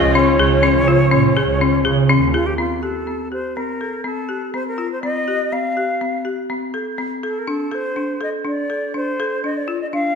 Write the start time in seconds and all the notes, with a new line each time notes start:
Already playing: D#3 F3 C#4 F4 D#5
0.03 C#2
0.13 C#4 C#5
0.39 C#2 G#4
0.63 C#4
0.76 C#3
0.88 F4
1.11 A#2 C#4
1.37 G#4
1.49 C#2
1.61 C#4
1.84 C#3 G#4
2.09 C#4
2.21 D#2
2.33 F4 G#4
2.46 G4
2.58 C4 F4
2.82 G4 A4
3.07 C4
3.32 G4 C5
3.56 C4 A#4
3.81 A4
4.04 C4 A4
4.29 G4
4.54 C4 C5
4.68 A#4
4.78 F4
4.92 C5
5.03 C4 D#5
5.28 G4
5.52 C4 F5
5.77 G4
6.01 C4
6.25 G4
6.50 C4
6.74 A4
6.98 C4
7.23 A4
7.39 A#4
7.47 D4 A4
7.71 A4 C5
7.96 D4
8.21 A4 D#5
8.45 D4 D5
8.70 A4
8.94 D4 C5
9.20 A4
9.44 D4 D#5
9.57 D5
9.68 F4
9.81 D#5
9.93 D4 F5